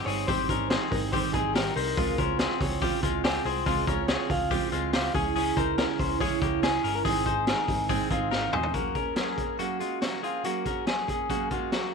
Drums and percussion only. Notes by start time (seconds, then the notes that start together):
0.07 hi-hat pedal, open hi-hat
0.28 kick, hi-hat pedal, open hi-hat
0.49 kick, hi-hat pedal, open hi-hat
0.70 snare, hi-hat pedal, open hi-hat
0.92 kick, hi-hat pedal, open hi-hat
1.13 kick, hi-hat pedal, open hi-hat
1.34 kick, hi-hat pedal, open hi-hat
1.55 snare, hi-hat pedal, open hi-hat
1.76 hi-hat pedal, open hi-hat
1.97 kick, hi-hat pedal, open hi-hat
2.18 kick, hi-hat pedal, open hi-hat
2.39 snare, hi-hat pedal, open hi-hat
2.61 kick, hi-hat pedal, open hi-hat
2.82 kick, hi-hat pedal, open hi-hat
3.03 kick, hi-hat pedal, open hi-hat
3.24 snare, hi-hat pedal, open hi-hat
3.45 hi-hat pedal, open hi-hat
3.66 kick, hi-hat pedal, open hi-hat
3.87 kick, hi-hat pedal, open hi-hat
4.08 snare, hi-hat pedal, open hi-hat
4.30 kick, hi-hat pedal, open hi-hat
4.51 kick, hi-hat pedal, open hi-hat
4.72 hi-hat pedal, open hi-hat
4.93 snare, hi-hat pedal, open hi-hat
5.15 kick, hi-hat pedal, open hi-hat
5.36 hi-hat pedal, open hi-hat
5.57 kick, hi-hat pedal, open hi-hat
5.78 snare, hi-hat pedal, open hi-hat
5.99 kick, hi-hat pedal, open hi-hat
6.21 kick, hi-hat pedal, open hi-hat
6.41 kick, hi-hat pedal, open hi-hat
6.63 snare, hi-hat pedal, open hi-hat
6.84 hi-hat pedal, open hi-hat
7.05 kick, hi-hat pedal, open hi-hat
7.26 kick, hi-hat pedal, open hi-hat
7.47 snare, hi-hat pedal, open hi-hat
7.68 kick, hi-hat pedal, open hi-hat
7.89 kick, hi-hat pedal, open hi-hat
8.10 kick, hi-hat pedal, open hi-hat
8.32 snare
8.53 mid tom
8.63 floor tom
8.74 kick, closed hi-hat
8.95 kick, closed hi-hat
9.16 snare, closed hi-hat
9.38 kick, closed hi-hat
9.59 closed hi-hat
9.80 closed hi-hat
10.02 snare, closed hi-hat
10.24 closed hi-hat
10.44 closed hi-hat
10.66 kick, closed hi-hat
10.87 snare, closed hi-hat
11.08 kick, closed hi-hat
11.30 kick, closed hi-hat
11.51 kick, closed hi-hat
11.72 snare, closed hi-hat